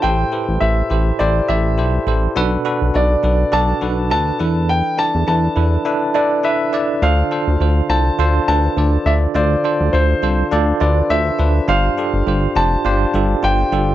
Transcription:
X:1
M:4/4
L:1/16
Q:"Swing 16ths" 1/4=103
K:Ddor
V:1 name="Grand piano"
g4 e4 d2 e4 z2 | z4 d4 a4 a4 | g2 a2 a6 d2 e4 | f6 a4 a4 e2 |
d4 c6 d2 e4 | f6 a6 g4 |]
V:2 name="Tine electric piano"
[EGAc]2 [EGAB]2 [EGAc]2 [EGAc]2 [EGAc]2 [EGAd]2 [EGAc]2 [EGAc]2 | [D^FAB]2 [DFAB]2 [DFAd]2 [DFAB]2 [DFAd]2 [DFAB]2 [DFAB]2 [DEAB]2- | [DEAB]2 [DEAd]2 [DEAB]2 [DEAB]2 [DEAB]2 [DEAB]2 [DEAB]2 [DEAd]2 | [DFAc]2 [DFAc]2 [DFAc]2 [DFAc]2 [DFAc]2 [DFAB]2 [DFAd]2 [DFAd]2 |
[DFAc]2 [DFAc]2 [DFAc]2 [DFAc]2 [DFAd]2 [DFAB]2 [DFAc]2 [DFAB]2 | [DFGc]2 [DFGA]2 [DFGc]2 [DFGc]2 [DFGc]2 [DFGA]2 [DFGc]2 [DFGA]2 |]
V:3 name="Tine electric piano" clef=bass
A,,6 z8 z2 | B,,6 z8 E,2- | E,4 z12 | D,6 z8 z2 |
D,6 z8 z2 | G,,6 z8 z2 |]
V:4 name="Analog synth bass" clef=bass
A,,,2 z A,,, A,,,2 A,,,2 A,,,2 A,,,2 B,,,2 A,,,2 | B,,,2 z B,,, B,,,2 B,,,2 B,,,2 B,,,2 D,,2 E,,2- | E,,2 z E,, E,,2 E,,2 z8 | D,,2 z D,, D,,2 C,,2 D,,2 D,,2 D,,2 D,,2 |
D,,2 z D,, D,,2 C,,2 D,,2 D,,2 D,,2 D,,2 | G,,,2 z G,,, G,,,2 F,,,2 G,,,2 G,,,2 G,,,2 G,,,2 |]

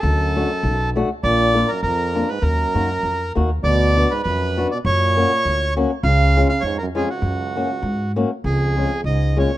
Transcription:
X:1
M:2/4
L:1/16
Q:"Swing" 1/4=100
K:F#
V:1 name="Accordion"
=A6 z2 | =d3 A A3 B | A6 z2 | =d3 B B3 d |
c6 z2 | e3 e c A G F- | F6 z2 | [K:Db] A4 e2 d2 |]
V:2 name="Steel-string acoustic guitar"
z2 [=A,=DF]2 z2 [A,DF]2 | z2 [A,=DE]2 z2 [A,DE]2 | z2 [A,DF]2 z2 [A,DF]2 | z2 [B,=DF]2 z2 [B,DF]2 |
z2 [A,CF]2 z2 [A,CF]2 | z2 [G,CE]2 z2 [G,CE]2 | z2 [A,CF]2 z2 [A,CF]2 | [K:Db] z2 [A,DF]2 z2 [A,DF]2 |]
V:3 name="Euphonium" clef=bass
F,,6 z2 | A,,3 F,, E,,3 G,, | F,,6 z2 | B,,3 G,, F,,3 B,, |
A,,6 z2 | C,3 C, G,, F,, E,, C,,- | C,,6 z2 | [K:Db] F,,4 A,,2 B,,2 |]
V:4 name="Upright bass" clef=bass
=D,,4 B,,,4 | A,,,4 E,,4 | D,,2 F,,2 E,,2 D,,2 | =D,,4 E,,4 |
F,,4 =D,,4 | C,,4 E,,4 | F,,4 G,,4 | [K:Db] D,,4 D,,4 |]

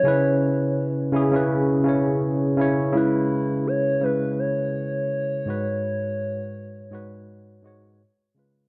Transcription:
X:1
M:4/4
L:1/16
Q:"Swing 16ths" 1/4=83
K:C#m
V:1 name="Soft synth lead"
c4 z12 | E4 c2 B2 c8- | c12 z4 |]
V:2 name="Tine electric piano"
[C,CEB]4- [C,CEB] z [C,CEG] [C,CEB]3 [C,CEc]4 [C,CEc]2 | [C,G,EB]4- [C,G,EB] z [C,G,EB]6- [C,G,EB] z [G,,G,FB]2- | [G,,G,FB]4- [G,,G,FB] z [G,,G,FB]4 [G,,G,Fc]2 z2 [C,G,^EB]2 |]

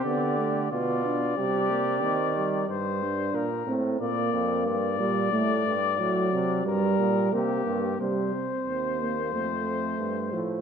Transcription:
X:1
M:4/4
L:1/8
Q:1/4=91
K:Cm
V:1 name="Cornet"
d2 d6 | c2 B z d2 d2- | d4 B2 G2 | c8 |]
V:2 name="Trumpet"
G2 F2 G4 | z8 | z8 | z8 |]
V:3 name="Euphonium"
=B, =A, B, D G, _B, C G, | G, D2 C B,3 G, | =A, z ^F,2 G,2 B,2 | G, C2 B, =A,3 F, |]
V:4 name="Bass trombone" clef=bass
D,2 =B,,2 C,2 E,2 | G,,2 B,, =A,, B,, F,, G,, B,, | =A,, G,, A,, C, G,, B,, C, G,, | C,2 E,,2 F,,2 G,, =A,, |]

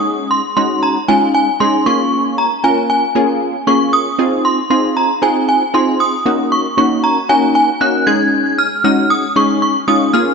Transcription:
X:1
M:4/4
L:1/8
Q:1/4=116
K:Abmix
V:1 name="Synth bell"
e' c' c' b a a c' d'- | d' b a a3 d' e'- | e' c' c' b a a c' e'- | e' d' d' b a a g' a'- |
a' f' f' e' d' d' e' f' |]
V:2 name="Analog polysynth"
[A,DEA] z [A,DEG]2 [A,DEF]2 [A,DEA] [B,DFA]- | [B,DFA] z [B,DFB]2 [B,DFA]2 [B,DFA]2 | [CEFA]2 [CEFA]2 [CEFA]2 [CEFA]2 | [B,DEG]2 [B,DEG]2 [B,DEG]2 [B,DEG] [A,DEA]- |
[A,DEA] z [A,DEG]2 [A,DEA]2 [A,DEF] [B,DFA] |]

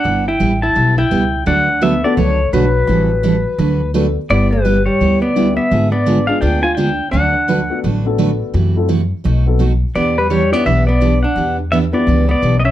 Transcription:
X:1
M:4/4
L:1/16
Q:"Swing" 1/4=170
K:D
V:1 name="Pedal steel guitar"
f2 g4 a4 g6 | f4 e2 d2 c4 B4- | B12 z4 | d2 B4 c4 d4 e2- |
e2 d4 ^e2 g2 ^g2 =g4 | f8 z8 | z16 | d2 B2 c2 d2 e2 d4 f2- |
f2 z2 e2 d4 d3- d/2 _e/2 =e2 |]
V:2 name="Upright piano"
z16 | z6 [A,B,DFA]2 z8 | z12 [A,B,DFA]2 z2 | z12 [G,B,DEG]2 z2 |
z6 [^G,B,D^E^G]2 z8 | z6 [A,B,DFA]2 z2 [A,B,DFA]6 | z2 [A,=CEFA]2 z6 [B,C^DFA]2 z4 | z6 [B,DEGB]2 z8 |
z6 [B,DEGB]2 z8 |]
V:3 name="Hollow-body jazz guitar"
D2 E4 E4 E6 | D4 B,2 B,2 A,4 F,4- | F,12 z4 | B,2 G,4 G,4 B,4 B,2- |
B,2 B,4 D2 D2 ^E2 D4 | D8 z8 | z16 | B,2 G,2 G,2 B,2 B,2 B,4 D2- |
D2 z2 B,2 B,4 B,3- B,/2 B,/2 C2 |]
V:4 name="Steel-string acoustic guitar"
[G,B,EG]2 z2 [G,B,EG] z3 [G,B,EG]2 z2 [G,B,EG] z3 | [D,F,A,DFB]2 z2 [D,F,A,DFB] z3 [D,F,A,DFB]2 z2 [D,F,A,DFB] z3 | [E,G,=CEA]2 z2 [E,G,CEA] z3 [D,F,A,DFB]2 z2 [D,F,A,DFB] z3 | [G,B,EG]2 z2 [G,B,EG] z3 [G,B,EG]2 z2 [G,B,EG] z3 |
[D,^G,B,^E^G]2 z2 [D,G,B,EG] z3 [D,G,B,EG]2 z2 [D,G,B,EG] z3 | [D,F,A,DFB]2 z2 [D,F,A,DFB] z3 [D,F,A,DFB]2 z2 [D,F,A,DFB] z3 | [=C,E,A,EF]2 z2 [C,E,A,EF] z3 [B,,F,A,^DF]2 z2 [B,,F,A,DF] z3 | [E,B,DG]2 z2 [E,B,DG] z3 [E,B,DG]2 z2 [E,B,DG] z3 |
[E,B,DG]2 z2 [E,B,DG] z3 [E,B,DG]2 z2 [E,B,DG] z3 |]
V:5 name="Upright bass" clef=bass
G,,,4 A,,,4 B,,,4 C,,4 | D,,8 C,,4 B,,,4 | A,,,8 D,,8 | G,,,8 D,,8 |
^G,,,8 D,,8 | D,,8 A,,,8 | F,,8 B,,,8 | E,,8 B,,,8 |
E,,8 C,,4 B,,,4 |]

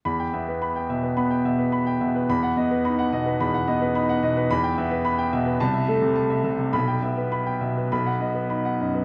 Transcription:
X:1
M:4/4
L:1/16
Q:1/4=107
K:Em
V:1 name="Grand piano"
z g e B b g e B b g e B b g e B | z f ^d B b f d B b f d B b f d B | z g e B b g e B z e A C, a e A C, | z g e B b g e B z f ^d B b f d B |]
V:2 name="Grand piano"
[E,,b]2 B,4 B,,2 B,2 B,,4 B,,2 | [E,,b]2 B,2 ^D2 B,,2 E,,2 B,2 D2 B,,2 | [E,,b]2 B,4 B,,2 [C,,a]2 A,4 C,2 | [B,,,b]2 B,4 B,,2 [B,,,b]2 B,2 ^D2 F,,2 |]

